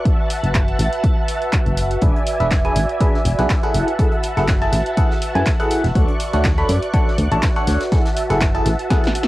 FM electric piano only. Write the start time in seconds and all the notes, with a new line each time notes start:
2.02 D4 G#4 B4 E5
2.40 D4 G#4 B4 E5
2.65 D4 G#4 B4 G#5
3.00 D4 G#4 B4 E5
3.38 D4 G#4 B4 F#5
3.63 E4 G#4 A4 F#5
3.99 E4 G#4 A4 F#5
4.37 E4 G#4 A4 F#5
4.61 E4 G#4 A4 A5
4.97 E4 G#4 A4 F#5
5.35 E4 G#4 A4 G#5
5.60 E4 G#4 A4 F#5
5.95 D4 A4 C#5 F#5
6.33 D4 A4 C#5 F#5
6.58 D4 A4 C#5 B5
6.94 D4 A4 C#5 F#5
7.32 D4 A4 C#5 A5
7.56 D4 A4 C#5 F#5
7.92 E4 G#4 A4 F#5
8.30 E4 G#4 A4 F#5
8.55 E4 G#4 A4 A5
8.91 E4 G#4 A4 F#5